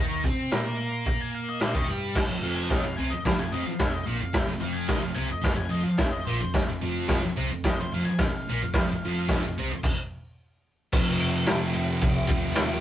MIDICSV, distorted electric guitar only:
0, 0, Header, 1, 3, 480
1, 0, Start_track
1, 0, Tempo, 547945
1, 1895, Time_signature, 4, 2, 24, 8
1, 11216, End_track
2, 0, Start_track
2, 0, Title_t, "Distorted electric guitar"
2, 0, Program_c, 0, 30
2, 0, Note_on_c, 0, 51, 81
2, 0, Note_on_c, 0, 63, 86
2, 213, Note_off_c, 0, 51, 0
2, 218, Note_off_c, 0, 63, 0
2, 229, Note_on_c, 0, 60, 78
2, 243, Note_on_c, 0, 72, 94
2, 455, Note_off_c, 0, 60, 0
2, 461, Note_on_c, 0, 58, 79
2, 462, Note_off_c, 0, 72, 0
2, 467, Note_on_c, 0, 70, 99
2, 1400, Note_off_c, 0, 58, 0
2, 1407, Note_off_c, 0, 70, 0
2, 1411, Note_on_c, 0, 58, 86
2, 1418, Note_on_c, 0, 70, 89
2, 1524, Note_on_c, 0, 51, 84
2, 1526, Note_off_c, 0, 58, 0
2, 1529, Note_off_c, 0, 70, 0
2, 1537, Note_on_c, 0, 63, 88
2, 1643, Note_off_c, 0, 51, 0
2, 1649, Note_off_c, 0, 63, 0
2, 1650, Note_on_c, 0, 55, 80
2, 1650, Note_on_c, 0, 67, 100
2, 1885, Note_off_c, 0, 67, 0
2, 1886, Note_off_c, 0, 55, 0
2, 1894, Note_on_c, 0, 41, 66
2, 1997, Note_off_c, 0, 41, 0
2, 2007, Note_on_c, 0, 41, 75
2, 2113, Note_off_c, 0, 41, 0
2, 2123, Note_on_c, 0, 41, 80
2, 2131, Note_on_c, 0, 53, 89
2, 2480, Note_off_c, 0, 41, 0
2, 2485, Note_off_c, 0, 53, 0
2, 2491, Note_on_c, 0, 41, 68
2, 2610, Note_on_c, 0, 48, 90
2, 2613, Note_off_c, 0, 41, 0
2, 2616, Note_on_c, 0, 60, 103
2, 2725, Note_off_c, 0, 48, 0
2, 2728, Note_off_c, 0, 60, 0
2, 2728, Note_on_c, 0, 41, 68
2, 2840, Note_off_c, 0, 41, 0
2, 2850, Note_on_c, 0, 41, 71
2, 2956, Note_off_c, 0, 41, 0
2, 2967, Note_on_c, 0, 41, 72
2, 3079, Note_off_c, 0, 41, 0
2, 3089, Note_on_c, 0, 41, 89
2, 3092, Note_on_c, 0, 53, 92
2, 3205, Note_off_c, 0, 41, 0
2, 3206, Note_off_c, 0, 53, 0
2, 3335, Note_on_c, 0, 41, 73
2, 3527, Note_off_c, 0, 41, 0
2, 3559, Note_on_c, 0, 46, 82
2, 3563, Note_on_c, 0, 58, 101
2, 3674, Note_on_c, 0, 41, 75
2, 3680, Note_off_c, 0, 46, 0
2, 3682, Note_off_c, 0, 58, 0
2, 3782, Note_off_c, 0, 41, 0
2, 3792, Note_on_c, 0, 41, 67
2, 3907, Note_off_c, 0, 41, 0
2, 3917, Note_on_c, 0, 41, 78
2, 4020, Note_off_c, 0, 41, 0
2, 4030, Note_on_c, 0, 41, 81
2, 4036, Note_on_c, 0, 53, 94
2, 4387, Note_off_c, 0, 41, 0
2, 4398, Note_on_c, 0, 41, 68
2, 4399, Note_off_c, 0, 53, 0
2, 4507, Note_on_c, 0, 48, 88
2, 4512, Note_on_c, 0, 60, 94
2, 4527, Note_off_c, 0, 41, 0
2, 4629, Note_on_c, 0, 41, 75
2, 4634, Note_off_c, 0, 48, 0
2, 4636, Note_off_c, 0, 60, 0
2, 4734, Note_off_c, 0, 41, 0
2, 4745, Note_on_c, 0, 41, 71
2, 4853, Note_off_c, 0, 41, 0
2, 4863, Note_on_c, 0, 41, 75
2, 4977, Note_off_c, 0, 41, 0
2, 4988, Note_on_c, 0, 41, 92
2, 4994, Note_on_c, 0, 53, 104
2, 5111, Note_off_c, 0, 41, 0
2, 5118, Note_off_c, 0, 53, 0
2, 5248, Note_on_c, 0, 41, 78
2, 5444, Note_off_c, 0, 41, 0
2, 5491, Note_on_c, 0, 46, 82
2, 5497, Note_on_c, 0, 58, 97
2, 5606, Note_off_c, 0, 46, 0
2, 5609, Note_off_c, 0, 58, 0
2, 5615, Note_on_c, 0, 41, 83
2, 5730, Note_off_c, 0, 41, 0
2, 5740, Note_on_c, 0, 41, 67
2, 5849, Note_off_c, 0, 41, 0
2, 5860, Note_on_c, 0, 41, 74
2, 5962, Note_off_c, 0, 41, 0
2, 5972, Note_on_c, 0, 41, 81
2, 5980, Note_on_c, 0, 53, 90
2, 6325, Note_off_c, 0, 41, 0
2, 6332, Note_off_c, 0, 53, 0
2, 6336, Note_on_c, 0, 41, 71
2, 6454, Note_on_c, 0, 48, 95
2, 6457, Note_off_c, 0, 41, 0
2, 6458, Note_on_c, 0, 60, 107
2, 6569, Note_off_c, 0, 48, 0
2, 6571, Note_off_c, 0, 60, 0
2, 6574, Note_on_c, 0, 41, 78
2, 6696, Note_off_c, 0, 41, 0
2, 6706, Note_on_c, 0, 41, 76
2, 6822, Note_off_c, 0, 41, 0
2, 6837, Note_on_c, 0, 41, 79
2, 6947, Note_off_c, 0, 41, 0
2, 6956, Note_on_c, 0, 41, 97
2, 6962, Note_on_c, 0, 53, 96
2, 7060, Note_off_c, 0, 41, 0
2, 7063, Note_off_c, 0, 53, 0
2, 7199, Note_on_c, 0, 41, 76
2, 7381, Note_off_c, 0, 41, 0
2, 7436, Note_on_c, 0, 46, 84
2, 7442, Note_on_c, 0, 58, 92
2, 7541, Note_off_c, 0, 46, 0
2, 7543, Note_off_c, 0, 58, 0
2, 7552, Note_on_c, 0, 41, 80
2, 7666, Note_off_c, 0, 41, 0
2, 7685, Note_on_c, 0, 41, 68
2, 7792, Note_off_c, 0, 41, 0
2, 7804, Note_on_c, 0, 41, 76
2, 7912, Note_off_c, 0, 41, 0
2, 7924, Note_on_c, 0, 41, 81
2, 7928, Note_on_c, 0, 53, 96
2, 8259, Note_off_c, 0, 41, 0
2, 8267, Note_off_c, 0, 53, 0
2, 8270, Note_on_c, 0, 41, 67
2, 8385, Note_off_c, 0, 41, 0
2, 8391, Note_on_c, 0, 48, 96
2, 8403, Note_on_c, 0, 60, 92
2, 8499, Note_off_c, 0, 48, 0
2, 8505, Note_off_c, 0, 60, 0
2, 8515, Note_on_c, 0, 41, 72
2, 8628, Note_off_c, 0, 41, 0
2, 9572, Note_on_c, 0, 41, 88
2, 9581, Note_on_c, 0, 48, 100
2, 9592, Note_on_c, 0, 53, 100
2, 10741, Note_off_c, 0, 53, 0
2, 10752, Note_on_c, 0, 53, 90
2, 10759, Note_off_c, 0, 48, 0
2, 10762, Note_off_c, 0, 41, 0
2, 10769, Note_on_c, 0, 48, 88
2, 10786, Note_on_c, 0, 41, 76
2, 10987, Note_off_c, 0, 41, 0
2, 10992, Note_off_c, 0, 53, 0
2, 10998, Note_on_c, 0, 41, 77
2, 11000, Note_off_c, 0, 48, 0
2, 11011, Note_on_c, 0, 48, 91
2, 11027, Note_on_c, 0, 53, 85
2, 11216, Note_off_c, 0, 41, 0
2, 11216, Note_off_c, 0, 48, 0
2, 11216, Note_off_c, 0, 53, 0
2, 11216, End_track
3, 0, Start_track
3, 0, Title_t, "Muted distorted electric guitar strokes"
3, 3217, Note_on_c, 9, 29, 56
3, 3305, Note_off_c, 9, 29, 0
3, 5121, Note_on_c, 9, 29, 61
3, 5209, Note_off_c, 9, 29, 0
3, 7072, Note_on_c, 9, 29, 58
3, 7159, Note_off_c, 9, 29, 0
3, 11216, End_track
0, 0, End_of_file